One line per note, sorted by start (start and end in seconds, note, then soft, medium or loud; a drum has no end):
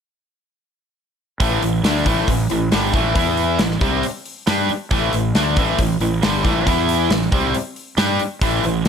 1.40 1.61 A1 medium
1.40 1.61 A2 medium
1.40 1.62 E3 medium
1.40 1.62 A3 loud
1.40 kick medium
1.40 open hi-hat medium
1.62 1.82 A1 medium
1.62 1.80 A2 medium
1.62 1.80 E3 medium
1.62 open hi-hat medium
1.83 2.04 D2 medium
1.83 2.05 D3 medium
1.83 2.06 A3 medium
1.83 2.06 D4 medium
1.83 snare loud
1.83 open hi-hat medium
1.96 snare soft
2.05 2.26 A1 medium
2.05 2.27 A2 medium
2.05 2.27 E3 medium
2.05 2.28 A3 loud
2.05 kick medium
2.05 open hi-hat medium
2.28 2.48 A1 medium
2.28 2.46 A2 medium
2.28 2.46 E3 medium
2.28 kick medium
2.28 open hi-hat medium
2.50 2.71 A1 medium
2.50 2.67 A2 medium
2.50 2.68 E3 medium
2.50 open hi-hat medium
2.71 2.92 G1 medium
2.71 2.93 G2 medium
2.71 2.93 D3 loud
2.71 2.93 G3 medium
2.71 snare loud
2.71 open hi-hat medium
2.93 3.14 A1 medium
2.93 3.14 A2 medium
2.93 3.14 E3 medium
2.93 3.15 A3 medium
2.93 kick medium
2.93 open hi-hat medium
3.15 3.56 E2 medium
3.15 3.58 E3 medium
3.15 3.59 B3 medium
3.15 3.59 E4 medium
3.15 kick medium
3.15 open hi-hat medium
3.37 open hi-hat medium
3.59 3.80 A1 medium
3.59 3.77 A2 medium
3.59 3.77 E3 medium
3.59 snare loud
3.59 open hi-hat medium
3.71 snare soft
3.81 4.02 C2 medium
3.81 4.02 C3 medium
3.81 4.03 G3 medium
3.81 4.03 C4 medium
3.81 kick medium
3.81 open hi-hat soft
4.03 open hi-hat medium
4.26 open hi-hat medium
4.47 4.68 G2 medium
4.47 4.69 G3 medium
4.47 4.69 D4 loud
4.47 4.69 G4 loud
4.47 snare loud
4.47 open hi-hat medium
4.69 muted fingered electric bass stroke soft
4.69 muted distorted electric guitar stroke medium
4.69 muted overdriven electric guitar stroke medium
4.69 open hi-hat soft
4.91 5.11 A1 medium
4.91 5.12 A2 medium
4.91 5.13 E3 medium
4.91 5.13 A3 loud
4.91 kick medium
4.91 open hi-hat medium
5.13 5.33 A1 medium
5.13 5.31 A2 medium
5.13 5.31 E3 medium
5.13 open hi-hat medium
5.34 5.55 D2 medium
5.34 5.56 D3 medium
5.34 5.56 A3 medium
5.34 5.57 D4 medium
5.34 snare loud
5.34 open hi-hat medium
5.56 5.77 A1 medium
5.56 5.79 A2 medium
5.56 5.79 E3 medium
5.56 5.79 A3 medium
5.56 kick medium
5.56 open hi-hat soft
5.78 5.99 A1 medium
5.78 5.97 A2 medium
5.78 5.97 E3 medium
5.78 kick medium
5.78 open hi-hat medium
6.00 6.21 A1 medium
6.00 6.19 A2 medium
6.00 6.19 E3 medium
6.00 open hi-hat medium
6.23 6.43 G1 medium
6.23 6.44 G2 medium
6.23 6.44 D3 medium
6.23 6.45 G3 loud
6.23 snare loud
6.23 open hi-hat medium
6.44 6.65 A1 medium
6.44 6.66 A2 medium
6.44 6.65 E3 medium
6.44 6.66 A3 loud
6.44 kick medium
6.44 open hi-hat soft
6.66 7.07 E2 medium
6.66 7.09 E3 loud
6.66 7.10 B3 medium
6.66 7.10 E4 loud
6.66 kick medium
6.66 open hi-hat medium
6.89 open hi-hat medium
7.10 7.30 A1 medium
7.10 7.28 A2 soft
7.10 7.28 E3 medium
7.10 snare loud
7.10 open hi-hat medium
7.22 snare soft
7.32 7.53 C2 medium
7.32 7.54 C3 medium
7.32 7.54 G3 medium
7.32 7.54 C4 medium
7.32 kick loud
7.32 open hi-hat soft
7.54 open hi-hat medium
7.76 open hi-hat soft
7.97 8.18 G2 medium
7.97 8.19 G3 medium
7.97 8.20 D4 medium
7.97 8.20 G4 medium
7.97 snare loud
7.97 open hi-hat medium
8.19 muted fingered electric bass stroke soft
8.19 muted distorted electric guitar stroke medium
8.19 muted overdriven electric guitar stroke medium
8.19 open hi-hat soft
8.41 8.62 A1 medium
8.41 8.63 A2 medium
8.41 8.64 E3 medium
8.41 8.64 A3 loud
8.41 kick medium
8.41 open hi-hat medium
8.63 8.84 A1 medium
8.63 8.82 A2 medium
8.63 8.82 E3 medium
8.63 open hi-hat soft
8.85 8.88 D2 medium
8.85 open hi-hat medium